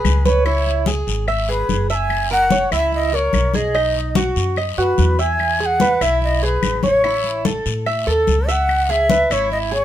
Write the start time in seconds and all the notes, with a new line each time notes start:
Already playing: G#4 B4
0.05 C#2, high conga, short guiro, claves
0.25 B4 C#5, high conga, short guiro
0.46 E4, high conga, long guiro, claves
0.66 high conga
0.86 G#4, high conga, short guiro
1.07 G#1, high conga, short guiro
1.28 E5, high conga, long guiro, claves
1.48 G#4 B4, high conga
1.69 F#1, high conga, short guiro
1.90 E5 A5, high conga, short guiro
1.95 G#5
2.10 high conga, long guiro, claves
2.30 A#4 F#5, high conga
2.50 C#5, high conga, short guiro
2.71 C#2 E4 E5, high conga, short guiro, claves
2.92 D#5, high conga, long guiro
3.12 A#4 C#5, high conga
3.33 B1, high conga, short guiro, claves
3.54 G#4 D#5, high conga, short guiro
3.74 D#4, high conga, long guiro, claves
3.95 high conga
4.15 F#4, high conga, short guiro
4.36 F#2, high conga, short guiro
4.56 D#5, high conga, long guiro, claves
4.78 F#2 F#4 B4, high conga
4.98 E2, high conga, short guiro
5.18 E5 G#5, high conga, short guiro
5.39 high conga, long guiro, claves
5.59 G#4 G#5, high conga
5.66 F#5
5.80 B4, high conga, short guiro
6.01 B1 E4 E5, high conga, short guiro, claves
6.21 D#5, high conga, long guiro
6.42 G#4 B4, high conga
6.63 A1, high conga, short guiro, claves
6.83 C#5, high conga, short guiro
7.04 E4, high conga, long guiro, claves
7.24 high conga
7.45 A4, high conga, short guiro
7.66 A2, high conga, short guiro
7.86 E5, high conga, long guiro, claves
8.07 D#2 A4 A#4, high conga
8.12 A4
8.27 C#2, high conga, short guiro
8.48 E5 F#5, high conga, short guiro
8.69 high conga, long guiro, claves
8.89 G#4 E5, high conga
9.10 B4, high conga, short guiro
9.30 G#1 E4 C#5, high conga, short guiro, claves
9.50 D#5, high conga, long guiro
9.71 G#4 C#5, high conga